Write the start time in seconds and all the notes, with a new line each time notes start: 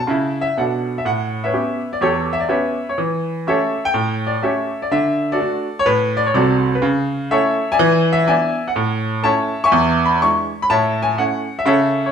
0.00 A5
0.07 C#3 E4
0.41 E5
0.57 B2 D4 A4 D5 F#5
0.98 E5
1.05 A2 F#5
1.44 B4 C#5 E5
1.52 B3 C#4 G4
1.93 D5
2.01 E2 G4 A4 C#5
2.33 E5
2.40 D5
2.49 B3 C#4 G4 B4 C#5 E5
2.89 C#5
2.98 E3
3.47 A3 C#4 G4 A4 C#5 E5
3.85 G5
3.94 A2
4.27 D5
4.42 A3 C#4 G4 A4 C#5 E5
4.82 D5
4.91 D3 E5
5.32 F#4 A4 D5
5.39 A3 D4 F#4
5.79 C#5
5.86 A2 B4
6.17 D5
6.26 C#5
6.34 C2 C3 F#4 A4 D5
6.75 B4
6.82 C#3
7.31 A3 C#4 E4 A4 C#5 E5
7.72 D5 E5 G#5
7.79 E3
8.13 E5
8.28 B3 D4 E4 D5 E5 G#5
8.68 F#5
8.76 A2
9.23 A3 C#4 E4 C#5 E5 A5
9.64 E5 G#5 C#6
9.72 E2
10.05 B5
10.22 G#3 D4 E4 C#6
10.62 B5
10.70 A2 C#5 E5 A5
11.02 G#5
11.18 A3 C#4 E4 F#5
11.59 E5
11.66 C#3 A4 C#5 E5
12.06 C#5